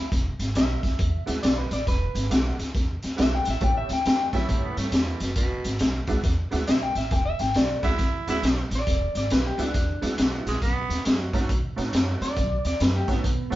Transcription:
0.12 upright bass E1, kick, snare, closed hi-hat
0.39 upright bass G#1, snare, closed hi-hat
0.55 upright bass B1, clean electric guitar E5, snare, closed hi-hat
0.83 upright bass C#2, kick, snare, closed hi-hat
0.99 upright bass E2, kick, closed hi-hat
1.26 upright bass D2, honky-tonk piano G#3 B3 D4 E4 F#4, snare, closed hi-hat
1.43 upright bass B1, clean electric guitar D5, snare, closed hi-hat
1.58 clean electric guitar B4
1.71 upright bass A1, clean electric guitar D5, snare, closed hi-hat
1.87 upright bass E1, clean electric guitar B4, kick, snare, closed hi-hat
2.15 upright bass G#1, snare, closed hi-hat
2.30 upright bass B1, honky-tonk piano G#3 B3 D4 E4 F#4, snare, closed hi-hat
2.59 upright bass C#2, snare, closed hi-hat
2.75 upright bass E2, kick, snare, closed hi-hat
3.03 upright bass D2, snare, closed hi-hat
3.16 upright bass B1, honky-tonk piano G#3 B3 D4 E4 F#4, clean electric guitar E5, snare, closed hi-hat
3.35 clean electric guitar G5
3.45 upright bass A1, snare, closed hi-hat
3.50 clean electric guitar E5
3.60 upright bass A1, honky-tonk piano A3 B3 C#4 E4 G4, clean electric guitar G5, kick, closed hi-hat
3.77 clean electric guitar E5
3.89 upright bass C#2, clean electric guitar G5, snare, closed hi-hat
4.05 upright bass E2, clean electric guitar G5, snare, closed hi-hat
4.33 upright bass F#2, honky-tonk piano A3 B3 C#4 E4 G4, tenor saxophone E4, kick, snare, closed hi-hat
4.49 upright bass A2, kick, closed hi-hat
4.64 tenor saxophone B3
4.77 upright bass G2, tenor saxophone A3, snare, closed hi-hat
4.92 upright bass E2, tenor saxophone G3, snare, closed hi-hat
5.07 tenor saxophone E3
5.20 upright bass F#1, tenor saxophone B2, snare, closed hi-hat
5.36 upright bass E1, tenor saxophone B2, kick, snare, closed hi-hat
5.64 upright bass G#1, snare, closed hi-hat
5.79 upright bass B1, snare, closed hi-hat
6.07 upright bass C#2, honky-tonk piano G#3 B3 D4 E4 F#4, kick, snare, closed hi-hat
6.24 upright bass E2, kick, snare, closed hi-hat
6.51 upright bass D2, honky-tonk piano G#3 B3 D4 E4 F#4, snare, closed hi-hat
6.67 upright bass B1, clean electric guitar E5, snare, closed hi-hat
6.83 clean electric guitar G5
6.95 upright bass A1, clean electric guitar E5, snare, closed hi-hat
7.11 upright bass E1, clean electric guitar G5, kick, snare, closed hi-hat
7.25 clean electric guitar E5
7.39 upright bass G#1, clean electric guitar G5, snare, closed hi-hat
7.54 upright bass B1, clean electric guitar D5, snare, closed hi-hat
7.82 upright bass C#2, honky-tonk piano G#3 B3 D4 E4 F#4, tenor saxophone E4, kick, snare, closed hi-hat
7.99 upright bass E2, kick, snare, closed hi-hat
8.27 upright bass D2, honky-tonk piano G#3 B3 D4 E4 F#4, tenor saxophone E4, snare, closed hi-hat
8.42 upright bass B1, snare, closed hi-hat
8.70 upright bass A1, snare, closed hi-hat
8.75 clean electric guitar D5
8.87 upright bass E1, kick, snare, closed hi-hat
9.15 upright bass G#1, clean electric guitar D5, snare, closed hi-hat
9.30 upright bass B1, clean electric guitar B4, snare, closed hi-hat
9.47 clean electric guitar G4
9.58 upright bass C#2, honky-tonk piano G#3 B3 D4 E4 F#4, clean electric guitar D4, snare, closed hi-hat
9.74 upright bass E2, kick, snare, closed hi-hat
10.01 upright bass D2, honky-tonk piano G#3 B3 D4 E4 F#4, snare, closed hi-hat
10.18 upright bass B1, snare, closed hi-hat
10.46 upright bass A#1, tenor saxophone G#3, snare, closed hi-hat
10.62 upright bass B1, tenor saxophone B3, kick, snare, closed hi-hat
10.89 upright bass D#2, snare, closed hi-hat
11.05 upright bass F#2, tenor saxophone G#3, snare, closed hi-hat
11.20 tenor saxophone F#3
11.33 upright bass G#2, tenor saxophone F#3, honky-tonk piano A3 B3 C#4 D#4 F#4, kick, snare, closed hi-hat
11.49 upright bass B2, kick, closed hi-hat
11.76 upright bass A2, honky-tonk piano A3 B3 C#4 D#4 F#4, snare, closed hi-hat
11.93 upright bass F#2, snare, closed hi-hat
12.21 upright bass E2, clean electric guitar D5, snare, closed hi-hat
12.36 upright bass B1, kick, snare, closed hi-hat
12.65 upright bass D#2, clean electric guitar D5, snare, closed hi-hat
12.80 upright bass F#2, clean electric guitar B4, snare, closed hi-hat
12.96 clean electric guitar G4
13.07 upright bass G#2, honky-tonk piano A3 B3 C#4 D#4 F#4, clean electric guitar B3, kick, snare, closed hi-hat
13.24 upright bass B2, kick, closed hi-hat
13.50 upright bass A2, honky-tonk piano A3 B3 C#4 D#4 F#4, closed hi-hat

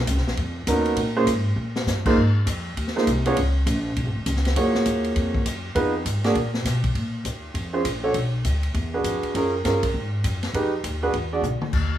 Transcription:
0.07 upright bass C#2, kick, hi-hat pedal, ride
0.17 upright bass B1, snare
0.27 upright bass A#1, snare
0.37 upright bass F2, kick, ride
0.67 upright bass D#2, grand piano B3 C#4 D#4 F#4 A#4, kick, hi-hat pedal, ride
0.85 ride
0.96 upright bass A#2, kick, ride
1.16 grand piano A#3 C#4 F4 G#4 C5
1.27 upright bass G#2, kick, hi-hat pedal, ride
1.56 upright bass A#2
1.76 snare
1.86 upright bass G2, snare, hi-hat pedal
2.06 grand piano A#3 D#4 F4 G#4 C5, kick, crash
2.17 upright bass G#2
2.46 upright bass F2, kick, hi-hat pedal, ride
2.77 upright bass D#2, kick, ride
2.87 snare
2.96 grand piano A#3 D#4 F4 G#4 C5, snare
3.07 upright bass C2, kick, hi-hat pedal, ride
3.25 grand piano B3 D4 F4 G#4 C#5, ride
3.37 upright bass C#2, kick, ride
3.66 upright bass A#1, kick, hi-hat pedal, ride
3.96 upright bass B1, kick, ride
4.06 upright bass G#1
4.15 upright bass F1
4.26 upright bass C#2, kick, hi-hat pedal, ride
4.36 snare
4.45 snare, ride
4.56 upright bass F#2, grand piano A#3 F4 F#4 G#4 C#5, kick, ride
4.74 muted upright bass stroke, snare
4.85 upright bass D#2, kick, hi-hat pedal, ride
5.04 ride
5.16 upright bass F2, kick, ride
5.34 kick
5.46 upright bass F#2, kick, hi-hat pedal, ride
5.75 upright bass F2, grand piano B3 D#4 F4 G#4 B4, kick, ride
6.05 upright bass G#2, kick, hi-hat pedal, ride
6.24 grand piano A#3 D4 F#4 G#4 D5, snare, ride
6.35 upright bass A#2, kick, ride
6.54 snare
6.65 upright bass B2, kick, snare, hi-hat pedal, ride
6.84 kick, ride
6.95 upright bass A#2, kick, ride
7.25 upright bass D#2, kick, hi-hat pedal, ride
7.54 upright bass F2, kick, ride
7.73 grand piano C#4 F4 G#4 C5
7.84 upright bass A#1, kick, hi-hat pedal, ride
8.03 grand piano D4 F#4 A4 C#5
8.14 upright bass B1, kick, ride
8.45 upright bass D2, kick, hi-hat pedal, ride
8.63 ride
8.74 upright bass E2, kick, ride
8.93 grand piano D4 F#4 G#4 B4
9.04 upright bass F2, kick, hi-hat pedal, ride
9.22 muted upright bass stroke, ride
9.34 upright bass F#2, grand piano C#4 F4 G#4 A#4, kick, ride
9.64 upright bass G2, grand piano C#4 F4 G#4 A#4, kick, snare, hi-hat pedal, ride
9.83 kick, ride
9.94 upright bass G#2, kick
10.24 upright bass F#2, kick, hi-hat pedal, ride
10.43 snare, ride
10.53 upright bass F2, grand piano D#4 G4 G#4 B4, kick, ride
10.84 upright bass D#2, kick, hi-hat pedal, ride
11.02 grand piano D4 F#4 G#4 B4
11.13 upright bass E2, kick, ride
11.33 grand piano D4 F#4 G#4 D5
11.41 upright bass B1, hi-hat pedal, mid tom
11.60 muted upright bass stroke, mid tom
11.73 upright bass D#2, kick, crash

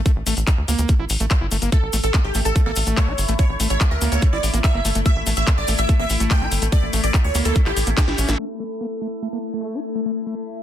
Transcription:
0.06 acid bass A3, kick, closed hi-hat, cabasa
0.16 analog synth bass A1
0.26 analog synth bass A1, acid bass A3, open hi-hat, cabasa
0.37 analog synth bass A1, closed hi-hat, cabasa
0.47 kick, clap, closed hi-hat, cabasa
0.58 analog synth bass D2
0.68 analog synth bass D2, acid bass A#3, open hi-hat, cabasa
0.79 analog synth bass D2, closed hi-hat, cabasa
0.88 acid bass A3, kick, closed hi-hat, cabasa
0.99 analog synth bass A1, acid bass E4
1.09 analog synth bass A1, open hi-hat, cabasa
1.20 analog synth bass A1, acid bass A3, closed hi-hat, cabasa
1.30 kick, clap, closed hi-hat, cabasa
1.41 analog synth bass G1, acid bass E4
1.51 analog synth bass G1, acid bass A3, open hi-hat, cabasa
1.62 analog synth bass G1, acid bass A#3, closed hi-hat, cabasa
1.72 acid bass A3, synth drone A3 E4, supersaw synth A4, kick, closed hi-hat, cabasa
1.83 analog synth bass A1
1.93 analog synth bass A1, acid bass A3, open hi-hat, cabasa
2.03 analog synth bass A1, supersaw synth A4, closed hi-hat, cabasa
2.14 acid bass A#3, kick, clap, closed hi-hat, cabasa
2.24 analog synth bass A1, supersaw synth G4
2.34 analog synth bass A1, acid bass A3, open hi-hat, cabasa
2.45 analog synth bass A1, supersaw synth A4, closed hi-hat, cabasa
2.56 acid bass A3, kick, closed hi-hat, cabasa
2.66 analog synth bass A1, acid bass A#3, supersaw synth A4
2.76 analog synth bass A1, open hi-hat, cabasa
2.87 analog synth bass A1, acid bass A3, closed hi-hat, cabasa
2.97 supersaw synth C#5, kick, clap, closed hi-hat, cabasa
3.08 analog synth bass A1, acid bass E4
3.18 analog synth bass G1, open hi-hat, cabasa
3.28 analog synth bass A1, acid bass A3, closed hi-hat, cabasa
3.39 acid bass A3, supersaw synth C#5, kick, closed hi-hat, cabasa
3.49 analog synth bass A1
3.60 analog synth bass A1, acid bass A3, open hi-hat, cabasa
3.70 analog synth bass A1, supersaw synth C#5, closed hi-hat, cabasa
3.81 kick, clap, closed hi-hat, cabasa
3.91 analog synth bass D2, supersaw synth A#4
4.01 analog synth bass D2, acid bass A#3, open hi-hat, cabasa
4.12 analog synth bass D2, supersaw synth C#5, closed hi-hat, cabasa
4.22 acid bass A3, kick, closed hi-hat, cabasa
4.33 analog synth bass A1, acid bass E4, supersaw synth D5
4.43 analog synth bass A1, open hi-hat, cabasa
4.54 analog synth bass A1, acid bass A#3, closed hi-hat, cabasa
4.64 supersaw synth E5, kick, clap, closed hi-hat, cabasa
4.74 analog synth bass G1, acid bass A#3
4.85 analog synth bass G1, acid bass A3, open hi-hat, cabasa
4.95 analog synth bass G1, acid bass A3, closed hi-hat, cabasa
5.06 acid bass A3, supersaw synth E5, kick, closed hi-hat, cabasa
5.16 analog synth bass A1
5.26 analog synth bass A1, acid bass A3, open hi-hat, cabasa
5.36 analog synth bass A1, supersaw synth E5, closed hi-hat, cabasa
5.47 acid bass A#3, kick, clap, closed hi-hat, cabasa
5.58 analog synth bass A1, supersaw synth D5
5.68 analog synth bass A1, acid bass A3, open hi-hat, cabasa
5.78 analog synth bass A1, supersaw synth E5, closed hi-hat, cabasa
5.89 acid bass A3, kick, closed hi-hat, cabasa
5.99 analog synth bass A1, acid bass A#3, supersaw synth E5
6.10 analog synth bass A1, open hi-hat, cabasa
6.20 analog synth bass A1, acid bass A3, closed hi-hat, cabasa
6.30 supersaw synth G5, kick, clap, closed hi-hat, cabasa
6.41 analog synth bass A1, acid bass E4
6.51 analog synth bass G1, open hi-hat, cabasa
6.62 analog synth bass A1, acid bass A3, closed hi-hat, cabasa
6.72 acid bass A3, supersaw synth D5, kick, closed hi-hat, cabasa
6.83 analog synth bass A1
6.93 analog synth bass A1, acid bass A3, open hi-hat, cabasa
7.04 analog synth bass A1, supersaw synth D5, closed hi-hat, cabasa
7.14 kick, clap, closed hi-hat, cabasa
7.24 analog synth bass D2, supersaw synth C#5
7.35 analog synth bass D2, acid bass A#3, open hi-hat, cabasa
7.45 analog synth bass D2, supersaw synth A4, closed hi-hat, cabasa
7.55 acid bass A3, kick, closed hi-hat, cabasa
7.66 analog synth bass A1, acid bass E4, supersaw synth G4, clap
7.77 analog synth bass A1, open hi-hat, cabasa
7.87 analog synth bass A1, acid bass A#3, closed hi-hat, cabasa
7.97 supersaw synth G4, kick, snare, clap, closed hi-hat, cabasa
8.08 analog synth bass A1, acid bass E4, snare
8.18 analog synth bass A1, acid bass C#4, open hi-hat, cabasa
8.28 analog synth bass A1, acid bass A3, snare, closed hi-hat, cabasa
8.39 acid bass A3, synth drone A3 E4
8.60 acid bass A3
8.81 acid bass A#3
9.01 acid bass A3
9.22 acid bass A3
9.33 acid bass A#3
9.54 acid bass A3
9.74 acid bass E4
9.95 acid bass A3
10.06 acid bass A3
10.26 acid bass A3

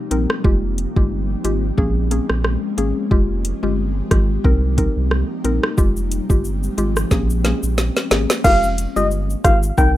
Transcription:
0.11 sub bass A#1, synth pluck C4 D#4 A#4, closed hi-hat
0.30 cross-stick
0.44 sub bass F1, synth pluck G#3 F4 G4, kick
0.78 closed hi-hat
0.96 sub bass G1, synth pluck G#3 F4 G4, kick
1.44 sub bass G#1, synth pluck G#3 F4 G4, closed hi-hat
1.78 sub bass A#1, synth pluck A#3 C#4 G#4, kick
2.11 synth pluck A#3 C#4 G#4, closed hi-hat
2.30 sub bass A#1, cross-stick
2.44 cross-stick
2.78 sub bass G#1, synth pluck A#3 C#4 G#4, closed hi-hat
3.11 sub bass F1, synth pluck G#3 F4 G4, kick
3.45 closed hi-hat
3.63 sub bass G1, synth pluck G#3 F4 G4
4.11 sub bass G#1, synth pluck G#3 F4 G4, kick, cross-stick, closed hi-hat
4.44 sub bass C2, synth pluck C4 D#4 A#4, kick
4.78 synth pluck C4 D#4 A#4, kick, closed hi-hat
4.97 sub bass C2
5.11 cross-stick
5.44 sub bass A#1, synth pluck C4 D#4 A#4, closed hi-hat
5.63 cross-stick
5.78 sub bass F1, synth pluck G#3 F4 G4, kick, shaker
5.97 shaker
6.12 closed hi-hat, shaker
6.30 sub bass G1, synth pluck G#3 F4 G4, kick, shaker
6.45 shaker
6.63 shaker
6.78 sub bass G#1, synth pluck G#3 F4 G4, closed hi-hat, shaker
6.96 cross-stick, shaker
7.11 sub bass A#1, synth pluck A#3 C#4 G#4, kick, snare, shaker
7.30 shaker
7.44 synth pluck A#3 C#4 G#4, snare, closed hi-hat, shaker
7.63 sub bass A#1, shaker
7.78 snare, shaker
7.97 snare, shaker
8.11 sub bass G#1, synth pluck A#3 C#4 G#4, snare, closed hi-hat, shaker
8.30 snare, shaker
8.44 sub bass F1, synth pluck G#3 F4 G4, soft synth lead F5, kick, crash, high bongo, shaker
8.63 shaker
8.78 closed hi-hat, shaker
8.96 sub bass G1, synth pluck G#3 F4 G4, soft synth lead D#5, shaker
9.11 shaker
9.30 shaker
9.44 sub bass G#1, synth pluck G#3 F4 G4, soft synth lead F5, kick, cross-stick, closed hi-hat, high bongo, shaker
9.63 shaker
9.78 sub bass C2, synth pluck C4 D#4 A#4, soft synth lead G5, kick, high bongo, shaker

